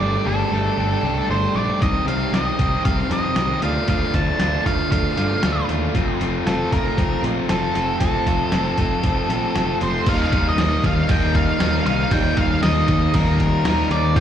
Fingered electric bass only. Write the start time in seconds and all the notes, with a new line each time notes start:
0.00 G1
0.26 G1
0.51 G1
0.77 G1
1.03 C2
1.29 G1
1.55 A#1
1.82 C2
2.07 C2
2.32 C2
2.59 C2
2.85 C2
3.10 F2
3.36 C2
3.61 D2
3.88 D2
4.14 D2
4.40 D2
4.66 D2
4.92 D2
5.18 G2
5.44 D2
5.69 D#2
5.95 F1
6.20 F1
6.45 F1
6.72 F1
6.98 F1
7.23 A#1
7.50 F1
7.75 F1
8.01 F1
8.26 F1
8.52 F1
8.78 F1
9.04 F1
9.29 A#1
9.55 F1
9.81 F1
10.07 D#2
10.32 D#2
10.58 D#2
10.83 D#2
11.10 D#2
11.61 D#2
11.86 C2
12.11 D#2
12.37 D#2
12.63 D#2
12.88 D#2
13.14 D#2
13.64 D#2
13.91 D#2
14.16 D2